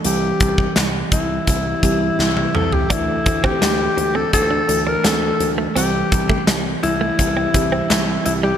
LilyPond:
<<
  \new Staff \with { instrumentName = "Alto saxophone" } { \time 4/4 \key c \mixolydian \tempo 4 = 84 g'4 r8 e'2 a'16 g'16 | e'8. g'4 a'16 a'8. bes'16 a'8 r8 | g'4 r8 e'2 e'16 g'16 | }
  \new Staff \with { instrumentName = "Clean electric guitar" } { \time 4/4 \key c \mixolydian r1 | d'16 r8 c'16 a16 r8 c'16 r16 d'16 r16 d'16 c'16 r8 a16 | c'16 r8 a16 g16 r8 a16 r16 c'16 r16 c'16 a16 r8 g16 | }
  \new Staff \with { instrumentName = "Tine electric piano" } { \time 4/4 \key c \mixolydian <e g c' g'>4~ <e g c' g'>16 r4 r16 <e g c' g'>4 r8 | <e a d' a'>4~ <e a d' a'>16 r4 r16 <e a d' a'>4 r8 | <e g c' g'>4~ <e g c' g'>16 r4 r16 <e g c' g'>4 r8 | }
  \new Staff \with { instrumentName = "Slap bass" } { \clef bass \time 4/4 \key c \mixolydian c,8 c,8 c,8 c,8 c,8 c,8 c,8 c,8 | d,8 d,8 d,8 d,8 d,8 d,8 d,8 d,8 | c,8 c,8 c,8 c,8 c,8 c,8 c,8 c,8 | }
  \new DrumStaff \with { instrumentName = "Drums" } \drummode { \time 4/4 hh8 <hh bd>16 bd16 <hh sn>8 <hh bd>8 <hh bd>8 <hh bd>8 sn16 tommh16 toml16 tomfh16 | <hh bd>8 <hh bd>16 bd16 <hh sn>8 hh8 <hh bd>8 hh8 <hh sn>8 hh8 | hh8 <hh bd>16 bd16 <hh sn>8 hh8 <hh bd>8 <hh bd>8 <hh sn>8 hh8 | }
>>